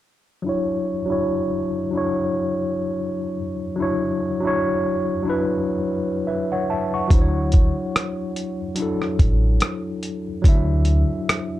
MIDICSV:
0, 0, Header, 1, 4, 480
1, 0, Start_track
1, 0, Key_signature, 2, "major"
1, 0, Tempo, 833333
1, 254, Time_signature, 4, 2, 24, 8
1, 6680, End_track
2, 0, Start_track
2, 0, Title_t, "Tine electric piano"
2, 0, Program_c, 0, 4
2, 243, Note_on_c, 0, 54, 68
2, 256, Note_on_c, 0, 62, 59
2, 268, Note_on_c, 0, 64, 74
2, 282, Note_on_c, 0, 73, 89
2, 377, Control_c, 0, 64, 127
2, 579, Note_off_c, 0, 54, 0
2, 585, Note_off_c, 0, 62, 0
2, 591, Note_off_c, 0, 64, 0
2, 598, Note_off_c, 0, 73, 0
2, 608, Note_on_c, 0, 54, 78
2, 620, Note_on_c, 0, 62, 62
2, 632, Note_on_c, 0, 64, 76
2, 645, Note_on_c, 0, 73, 82
2, 1038, Note_off_c, 0, 54, 0
2, 1044, Note_off_c, 0, 62, 0
2, 1051, Note_off_c, 0, 64, 0
2, 1057, Note_off_c, 0, 73, 0
2, 1100, Note_on_c, 0, 54, 67
2, 1113, Note_on_c, 0, 62, 65
2, 1126, Note_on_c, 0, 64, 65
2, 1139, Note_on_c, 0, 73, 84
2, 1944, Note_off_c, 0, 54, 0
2, 1950, Note_off_c, 0, 62, 0
2, 1957, Note_off_c, 0, 64, 0
2, 1963, Note_off_c, 0, 73, 0
2, 2165, Note_on_c, 0, 54, 78
2, 2178, Note_on_c, 0, 62, 62
2, 2190, Note_on_c, 0, 64, 75
2, 2203, Note_on_c, 0, 73, 85
2, 2500, Note_off_c, 0, 54, 0
2, 2506, Note_off_c, 0, 62, 0
2, 2512, Note_off_c, 0, 64, 0
2, 2519, Note_off_c, 0, 73, 0
2, 2536, Note_on_c, 0, 54, 81
2, 2548, Note_on_c, 0, 62, 69
2, 2562, Note_on_c, 0, 64, 69
2, 2575, Note_on_c, 0, 73, 93
2, 2962, Note_off_c, 0, 54, 0
2, 2968, Note_off_c, 0, 62, 0
2, 2975, Note_off_c, 0, 64, 0
2, 2982, Note_off_c, 0, 73, 0
2, 3012, Note_on_c, 0, 54, 72
2, 3025, Note_on_c, 0, 62, 63
2, 3039, Note_on_c, 0, 64, 66
2, 3051, Note_on_c, 0, 71, 88
2, 3610, Note_off_c, 0, 71, 0
2, 3612, Note_on_c, 0, 76, 57
2, 3616, Note_on_c, 0, 71, 46
2, 3742, Note_off_c, 0, 76, 0
2, 3744, Note_off_c, 0, 71, 0
2, 3754, Note_on_c, 0, 78, 67
2, 3758, Note_on_c, 0, 73, 59
2, 3851, Note_off_c, 0, 78, 0
2, 3853, Note_off_c, 0, 73, 0
2, 3858, Note_on_c, 0, 81, 61
2, 3860, Note_off_c, 0, 54, 0
2, 3863, Note_on_c, 0, 76, 54
2, 3866, Note_off_c, 0, 62, 0
2, 3873, Note_off_c, 0, 64, 0
2, 3985, Note_off_c, 0, 81, 0
2, 3987, Note_off_c, 0, 76, 0
2, 3996, Note_on_c, 0, 85, 62
2, 4000, Note_on_c, 0, 78, 47
2, 4077, Note_on_c, 0, 54, 76
2, 4090, Note_on_c, 0, 62, 64
2, 4101, Control_c, 0, 64, 0
2, 4104, Note_on_c, 0, 64, 70
2, 4116, Note_on_c, 0, 72, 65
2, 4147, Note_off_c, 0, 72, 0
2, 4154, Note_on_c, 0, 73, 75
2, 4214, Control_c, 0, 64, 127
2, 4221, Note_off_c, 0, 85, 0
2, 4223, Note_off_c, 0, 78, 0
2, 4952, Note_off_c, 0, 54, 0
2, 4959, Note_off_c, 0, 62, 0
2, 4966, Note_off_c, 0, 64, 0
2, 4991, Note_off_c, 0, 73, 0
2, 5039, Note_on_c, 0, 54, 65
2, 5054, Note_on_c, 0, 62, 63
2, 5067, Note_on_c, 0, 64, 62
2, 5081, Note_on_c, 0, 69, 67
2, 5913, Note_off_c, 0, 54, 0
2, 5921, Note_off_c, 0, 62, 0
2, 5927, Note_off_c, 0, 64, 0
2, 5934, Note_off_c, 0, 69, 0
2, 6002, Note_on_c, 0, 54, 73
2, 6016, Note_on_c, 0, 62, 71
2, 6028, Note_on_c, 0, 64, 65
2, 6041, Note_on_c, 0, 76, 84
2, 6680, Note_off_c, 0, 54, 0
2, 6680, Note_off_c, 0, 62, 0
2, 6680, Note_off_c, 0, 64, 0
2, 6680, Note_off_c, 0, 76, 0
2, 6680, End_track
3, 0, Start_track
3, 0, Title_t, "Upright bass"
3, 0, Program_c, 1, 32
3, 4096, Note_on_c, 1, 38, 93
3, 4428, Note_off_c, 1, 38, 0
3, 5298, Note_on_c, 1, 33, 88
3, 5509, Note_off_c, 1, 33, 0
3, 6017, Note_on_c, 1, 38, 104
3, 6349, Note_off_c, 1, 38, 0
3, 6680, End_track
4, 0, Start_track
4, 0, Title_t, "Drums"
4, 4092, Note_on_c, 9, 36, 106
4, 4095, Note_on_c, 9, 42, 94
4, 4150, Note_off_c, 9, 36, 0
4, 4153, Note_off_c, 9, 42, 0
4, 4331, Note_on_c, 9, 42, 62
4, 4341, Note_on_c, 9, 36, 76
4, 4388, Note_off_c, 9, 42, 0
4, 4399, Note_off_c, 9, 36, 0
4, 4584, Note_on_c, 9, 37, 100
4, 4587, Note_on_c, 9, 42, 76
4, 4642, Note_off_c, 9, 37, 0
4, 4645, Note_off_c, 9, 42, 0
4, 4818, Note_on_c, 9, 42, 63
4, 4875, Note_off_c, 9, 42, 0
4, 5044, Note_on_c, 9, 42, 80
4, 5102, Note_off_c, 9, 42, 0
4, 5193, Note_on_c, 9, 37, 32
4, 5251, Note_off_c, 9, 37, 0
4, 5295, Note_on_c, 9, 36, 83
4, 5296, Note_on_c, 9, 42, 54
4, 5352, Note_off_c, 9, 36, 0
4, 5354, Note_off_c, 9, 42, 0
4, 5532, Note_on_c, 9, 42, 78
4, 5541, Note_on_c, 9, 37, 92
4, 5589, Note_off_c, 9, 42, 0
4, 5598, Note_off_c, 9, 37, 0
4, 5776, Note_on_c, 9, 42, 59
4, 5833, Note_off_c, 9, 42, 0
4, 6014, Note_on_c, 9, 36, 111
4, 6021, Note_on_c, 9, 42, 89
4, 6072, Note_off_c, 9, 36, 0
4, 6078, Note_off_c, 9, 42, 0
4, 6249, Note_on_c, 9, 42, 58
4, 6307, Note_off_c, 9, 42, 0
4, 6505, Note_on_c, 9, 37, 117
4, 6507, Note_on_c, 9, 42, 75
4, 6562, Note_off_c, 9, 37, 0
4, 6565, Note_off_c, 9, 42, 0
4, 6680, End_track
0, 0, End_of_file